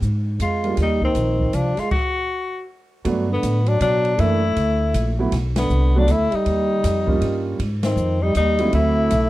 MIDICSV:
0, 0, Header, 1, 7, 480
1, 0, Start_track
1, 0, Tempo, 378549
1, 992, Time_signature, 3, 2, 24, 8
1, 11787, End_track
2, 0, Start_track
2, 0, Title_t, "Tenor saxophone"
2, 0, Program_c, 0, 66
2, 533, Note_on_c, 0, 65, 81
2, 970, Note_off_c, 0, 65, 0
2, 1045, Note_on_c, 0, 63, 86
2, 1302, Note_off_c, 0, 63, 0
2, 1326, Note_on_c, 0, 60, 81
2, 1957, Note_on_c, 0, 62, 81
2, 1976, Note_off_c, 0, 60, 0
2, 2273, Note_on_c, 0, 65, 85
2, 2292, Note_off_c, 0, 62, 0
2, 2417, Note_off_c, 0, 65, 0
2, 2424, Note_on_c, 0, 66, 95
2, 3336, Note_off_c, 0, 66, 0
2, 4223, Note_on_c, 0, 59, 84
2, 4670, Note_on_c, 0, 62, 84
2, 4689, Note_off_c, 0, 59, 0
2, 4837, Note_off_c, 0, 62, 0
2, 4842, Note_on_c, 0, 62, 99
2, 5324, Note_on_c, 0, 64, 94
2, 5343, Note_off_c, 0, 62, 0
2, 6579, Note_off_c, 0, 64, 0
2, 7081, Note_on_c, 0, 59, 94
2, 7591, Note_on_c, 0, 62, 91
2, 7610, Note_off_c, 0, 59, 0
2, 7755, Note_on_c, 0, 64, 98
2, 7774, Note_off_c, 0, 62, 0
2, 8059, Note_on_c, 0, 63, 93
2, 8078, Note_off_c, 0, 64, 0
2, 9476, Note_off_c, 0, 63, 0
2, 9944, Note_on_c, 0, 60, 81
2, 10427, Note_on_c, 0, 63, 83
2, 10446, Note_off_c, 0, 60, 0
2, 10597, Note_off_c, 0, 63, 0
2, 10608, Note_on_c, 0, 63, 103
2, 11047, Note_off_c, 0, 63, 0
2, 11091, Note_on_c, 0, 64, 96
2, 11787, Note_off_c, 0, 64, 0
2, 11787, End_track
3, 0, Start_track
3, 0, Title_t, "Grand piano"
3, 0, Program_c, 1, 0
3, 806, Note_on_c, 1, 55, 60
3, 810, Note_on_c, 1, 58, 52
3, 820, Note_on_c, 1, 62, 49
3, 830, Note_on_c, 1, 65, 56
3, 970, Note_off_c, 1, 55, 0
3, 972, Note_off_c, 1, 58, 0
3, 976, Note_off_c, 1, 62, 0
3, 981, Note_off_c, 1, 65, 0
3, 3863, Note_on_c, 1, 54, 76
3, 3868, Note_on_c, 1, 57, 61
3, 3878, Note_on_c, 1, 59, 68
3, 3883, Note_on_c, 1, 62, 76
3, 4139, Note_off_c, 1, 54, 0
3, 4142, Note_off_c, 1, 57, 0
3, 4147, Note_off_c, 1, 59, 0
3, 4149, Note_off_c, 1, 62, 0
3, 5304, Note_on_c, 1, 52, 71
3, 5313, Note_on_c, 1, 57, 65
3, 5317, Note_on_c, 1, 58, 61
3, 5323, Note_on_c, 1, 62, 69
3, 5579, Note_off_c, 1, 52, 0
3, 5583, Note_off_c, 1, 57, 0
3, 5585, Note_off_c, 1, 58, 0
3, 5589, Note_off_c, 1, 62, 0
3, 6581, Note_on_c, 1, 54, 63
3, 6589, Note_on_c, 1, 57, 63
3, 6596, Note_on_c, 1, 64, 74
3, 6599, Note_on_c, 1, 59, 62
3, 6734, Note_off_c, 1, 54, 0
3, 6739, Note_off_c, 1, 57, 0
3, 6742, Note_off_c, 1, 64, 0
3, 6744, Note_off_c, 1, 59, 0
3, 7545, Note_on_c, 1, 54, 67
3, 7551, Note_on_c, 1, 57, 59
3, 7559, Note_on_c, 1, 59, 60
3, 7564, Note_on_c, 1, 62, 80
3, 7697, Note_off_c, 1, 54, 0
3, 7700, Note_off_c, 1, 57, 0
3, 7704, Note_off_c, 1, 59, 0
3, 7706, Note_off_c, 1, 62, 0
3, 8962, Note_on_c, 1, 55, 69
3, 8968, Note_on_c, 1, 58, 54
3, 8978, Note_on_c, 1, 61, 52
3, 8982, Note_on_c, 1, 65, 69
3, 9589, Note_off_c, 1, 55, 0
3, 9592, Note_off_c, 1, 58, 0
3, 9597, Note_off_c, 1, 61, 0
3, 9599, Note_off_c, 1, 65, 0
3, 10886, Note_on_c, 1, 54, 61
3, 10896, Note_on_c, 1, 57, 63
3, 10899, Note_on_c, 1, 60, 64
3, 10904, Note_on_c, 1, 64, 78
3, 11512, Note_off_c, 1, 54, 0
3, 11518, Note_off_c, 1, 57, 0
3, 11519, Note_off_c, 1, 60, 0
3, 11522, Note_off_c, 1, 64, 0
3, 11787, End_track
4, 0, Start_track
4, 0, Title_t, "Trombone"
4, 0, Program_c, 2, 57
4, 514, Note_on_c, 2, 56, 69
4, 959, Note_off_c, 2, 56, 0
4, 1010, Note_on_c, 2, 55, 76
4, 1283, Note_off_c, 2, 55, 0
4, 1310, Note_on_c, 2, 51, 76
4, 1966, Note_on_c, 2, 53, 74
4, 1985, Note_off_c, 2, 51, 0
4, 2256, Note_on_c, 2, 56, 72
4, 2275, Note_off_c, 2, 53, 0
4, 2432, Note_off_c, 2, 56, 0
4, 4182, Note_on_c, 2, 50, 76
4, 4643, Note_on_c, 2, 54, 77
4, 4662, Note_off_c, 2, 50, 0
4, 4811, Note_off_c, 2, 54, 0
4, 4819, Note_on_c, 2, 54, 85
4, 5302, Note_on_c, 2, 57, 83
4, 5321, Note_off_c, 2, 54, 0
4, 6568, Note_off_c, 2, 57, 0
4, 7055, Note_on_c, 2, 50, 74
4, 7558, Note_on_c, 2, 54, 84
4, 7577, Note_off_c, 2, 50, 0
4, 7727, Note_on_c, 2, 57, 96
4, 7746, Note_off_c, 2, 54, 0
4, 8023, Note_on_c, 2, 55, 87
4, 8042, Note_off_c, 2, 57, 0
4, 9458, Note_off_c, 2, 55, 0
4, 9916, Note_on_c, 2, 51, 73
4, 10424, Note_on_c, 2, 55, 86
4, 10443, Note_off_c, 2, 51, 0
4, 10596, Note_off_c, 2, 55, 0
4, 10603, Note_on_c, 2, 55, 79
4, 11044, Note_off_c, 2, 55, 0
4, 11084, Note_on_c, 2, 57, 87
4, 11787, Note_off_c, 2, 57, 0
4, 11787, End_track
5, 0, Start_track
5, 0, Title_t, "Upright bass"
5, 0, Program_c, 3, 32
5, 22, Note_on_c, 3, 44, 80
5, 492, Note_off_c, 3, 44, 0
5, 498, Note_on_c, 3, 41, 77
5, 970, Note_off_c, 3, 41, 0
5, 981, Note_on_c, 3, 39, 82
5, 1452, Note_off_c, 3, 39, 0
5, 1458, Note_on_c, 3, 34, 74
5, 1930, Note_off_c, 3, 34, 0
5, 1941, Note_on_c, 3, 36, 76
5, 2228, Note_off_c, 3, 36, 0
5, 3870, Note_on_c, 3, 43, 90
5, 4335, Note_off_c, 3, 43, 0
5, 4345, Note_on_c, 3, 45, 85
5, 4812, Note_off_c, 3, 45, 0
5, 4826, Note_on_c, 3, 47, 82
5, 5293, Note_off_c, 3, 47, 0
5, 5307, Note_on_c, 3, 42, 90
5, 5773, Note_off_c, 3, 42, 0
5, 5788, Note_on_c, 3, 38, 78
5, 6253, Note_off_c, 3, 38, 0
5, 6264, Note_on_c, 3, 34, 85
5, 6731, Note_off_c, 3, 34, 0
5, 6748, Note_on_c, 3, 35, 88
5, 7213, Note_off_c, 3, 35, 0
5, 7226, Note_on_c, 3, 36, 91
5, 7692, Note_off_c, 3, 36, 0
5, 7703, Note_on_c, 3, 38, 88
5, 7988, Note_off_c, 3, 38, 0
5, 8189, Note_on_c, 3, 39, 78
5, 8654, Note_off_c, 3, 39, 0
5, 8672, Note_on_c, 3, 41, 93
5, 9136, Note_off_c, 3, 41, 0
5, 9146, Note_on_c, 3, 43, 76
5, 9613, Note_off_c, 3, 43, 0
5, 9626, Note_on_c, 3, 44, 86
5, 10082, Note_off_c, 3, 44, 0
5, 10089, Note_on_c, 3, 41, 94
5, 10566, Note_off_c, 3, 41, 0
5, 10594, Note_on_c, 3, 39, 87
5, 11059, Note_off_c, 3, 39, 0
5, 11067, Note_on_c, 3, 38, 94
5, 11536, Note_off_c, 3, 38, 0
5, 11547, Note_on_c, 3, 35, 82
5, 11787, Note_off_c, 3, 35, 0
5, 11787, End_track
6, 0, Start_track
6, 0, Title_t, "Muted upright bass strokes"
6, 2252, Note_on_c, 9, 29, 36
6, 2379, Note_off_c, 9, 29, 0
6, 8024, Note_on_c, 9, 29, 36
6, 8151, Note_off_c, 9, 29, 0
6, 11787, End_track
7, 0, Start_track
7, 0, Title_t, "Drums"
7, 24, Note_on_c, 9, 44, 51
7, 27, Note_on_c, 9, 36, 20
7, 151, Note_off_c, 9, 44, 0
7, 154, Note_off_c, 9, 36, 0
7, 504, Note_on_c, 9, 44, 58
7, 504, Note_on_c, 9, 51, 62
7, 506, Note_on_c, 9, 36, 18
7, 631, Note_off_c, 9, 44, 0
7, 631, Note_off_c, 9, 51, 0
7, 633, Note_off_c, 9, 36, 0
7, 808, Note_on_c, 9, 51, 40
7, 935, Note_off_c, 9, 51, 0
7, 976, Note_on_c, 9, 51, 57
7, 979, Note_on_c, 9, 38, 36
7, 985, Note_on_c, 9, 36, 25
7, 1103, Note_off_c, 9, 51, 0
7, 1105, Note_off_c, 9, 38, 0
7, 1112, Note_off_c, 9, 36, 0
7, 1288, Note_on_c, 9, 36, 48
7, 1415, Note_off_c, 9, 36, 0
7, 1455, Note_on_c, 9, 44, 56
7, 1455, Note_on_c, 9, 51, 53
7, 1464, Note_on_c, 9, 36, 16
7, 1582, Note_off_c, 9, 44, 0
7, 1582, Note_off_c, 9, 51, 0
7, 1590, Note_off_c, 9, 36, 0
7, 1768, Note_on_c, 9, 36, 43
7, 1895, Note_off_c, 9, 36, 0
7, 1942, Note_on_c, 9, 44, 53
7, 1942, Note_on_c, 9, 51, 54
7, 1945, Note_on_c, 9, 36, 17
7, 2068, Note_off_c, 9, 44, 0
7, 2068, Note_off_c, 9, 51, 0
7, 2072, Note_off_c, 9, 36, 0
7, 2246, Note_on_c, 9, 51, 37
7, 2248, Note_on_c, 9, 38, 30
7, 2372, Note_off_c, 9, 51, 0
7, 2375, Note_off_c, 9, 38, 0
7, 2424, Note_on_c, 9, 49, 61
7, 2427, Note_on_c, 9, 36, 76
7, 2551, Note_off_c, 9, 49, 0
7, 2554, Note_off_c, 9, 36, 0
7, 3868, Note_on_c, 9, 51, 60
7, 3869, Note_on_c, 9, 36, 23
7, 3994, Note_off_c, 9, 51, 0
7, 3995, Note_off_c, 9, 36, 0
7, 4349, Note_on_c, 9, 36, 20
7, 4350, Note_on_c, 9, 44, 66
7, 4350, Note_on_c, 9, 51, 70
7, 4476, Note_off_c, 9, 36, 0
7, 4477, Note_off_c, 9, 44, 0
7, 4477, Note_off_c, 9, 51, 0
7, 4646, Note_on_c, 9, 51, 47
7, 4772, Note_off_c, 9, 51, 0
7, 4826, Note_on_c, 9, 44, 55
7, 4826, Note_on_c, 9, 51, 68
7, 4828, Note_on_c, 9, 36, 23
7, 4952, Note_off_c, 9, 44, 0
7, 4952, Note_off_c, 9, 51, 0
7, 4954, Note_off_c, 9, 36, 0
7, 5132, Note_on_c, 9, 51, 41
7, 5259, Note_off_c, 9, 51, 0
7, 5307, Note_on_c, 9, 36, 26
7, 5308, Note_on_c, 9, 51, 59
7, 5434, Note_off_c, 9, 36, 0
7, 5435, Note_off_c, 9, 51, 0
7, 5788, Note_on_c, 9, 36, 22
7, 5789, Note_on_c, 9, 51, 60
7, 5915, Note_off_c, 9, 36, 0
7, 5916, Note_off_c, 9, 51, 0
7, 6267, Note_on_c, 9, 44, 59
7, 6267, Note_on_c, 9, 51, 64
7, 6268, Note_on_c, 9, 36, 21
7, 6394, Note_off_c, 9, 44, 0
7, 6394, Note_off_c, 9, 51, 0
7, 6395, Note_off_c, 9, 36, 0
7, 6747, Note_on_c, 9, 51, 65
7, 6749, Note_on_c, 9, 36, 26
7, 6749, Note_on_c, 9, 38, 37
7, 6873, Note_off_c, 9, 51, 0
7, 6875, Note_off_c, 9, 36, 0
7, 6876, Note_off_c, 9, 38, 0
7, 7049, Note_on_c, 9, 51, 73
7, 7051, Note_on_c, 9, 38, 84
7, 7175, Note_off_c, 9, 51, 0
7, 7178, Note_off_c, 9, 38, 0
7, 7227, Note_on_c, 9, 44, 46
7, 7354, Note_off_c, 9, 44, 0
7, 7707, Note_on_c, 9, 44, 71
7, 7707, Note_on_c, 9, 51, 65
7, 7710, Note_on_c, 9, 36, 27
7, 7833, Note_off_c, 9, 44, 0
7, 7833, Note_off_c, 9, 51, 0
7, 7836, Note_off_c, 9, 36, 0
7, 8013, Note_on_c, 9, 51, 47
7, 8140, Note_off_c, 9, 51, 0
7, 8190, Note_on_c, 9, 51, 58
7, 8191, Note_on_c, 9, 36, 23
7, 8316, Note_off_c, 9, 51, 0
7, 8318, Note_off_c, 9, 36, 0
7, 8671, Note_on_c, 9, 36, 27
7, 8672, Note_on_c, 9, 44, 64
7, 8672, Note_on_c, 9, 51, 72
7, 8675, Note_on_c, 9, 38, 36
7, 8798, Note_off_c, 9, 36, 0
7, 8799, Note_off_c, 9, 44, 0
7, 8799, Note_off_c, 9, 51, 0
7, 8801, Note_off_c, 9, 38, 0
7, 8973, Note_on_c, 9, 36, 58
7, 9100, Note_off_c, 9, 36, 0
7, 9150, Note_on_c, 9, 51, 62
7, 9151, Note_on_c, 9, 36, 23
7, 9277, Note_off_c, 9, 51, 0
7, 9278, Note_off_c, 9, 36, 0
7, 9630, Note_on_c, 9, 36, 25
7, 9631, Note_on_c, 9, 51, 68
7, 9757, Note_off_c, 9, 36, 0
7, 9758, Note_off_c, 9, 51, 0
7, 9928, Note_on_c, 9, 51, 65
7, 9930, Note_on_c, 9, 38, 80
7, 10055, Note_off_c, 9, 51, 0
7, 10057, Note_off_c, 9, 38, 0
7, 10103, Note_on_c, 9, 44, 61
7, 10230, Note_off_c, 9, 44, 0
7, 10584, Note_on_c, 9, 44, 63
7, 10584, Note_on_c, 9, 51, 71
7, 10589, Note_on_c, 9, 36, 20
7, 10711, Note_off_c, 9, 44, 0
7, 10711, Note_off_c, 9, 51, 0
7, 10716, Note_off_c, 9, 36, 0
7, 10888, Note_on_c, 9, 51, 50
7, 11014, Note_off_c, 9, 51, 0
7, 11066, Note_on_c, 9, 51, 65
7, 11069, Note_on_c, 9, 36, 17
7, 11193, Note_off_c, 9, 51, 0
7, 11196, Note_off_c, 9, 36, 0
7, 11546, Note_on_c, 9, 44, 58
7, 11546, Note_on_c, 9, 51, 72
7, 11550, Note_on_c, 9, 36, 23
7, 11672, Note_off_c, 9, 44, 0
7, 11672, Note_off_c, 9, 51, 0
7, 11677, Note_off_c, 9, 36, 0
7, 11787, End_track
0, 0, End_of_file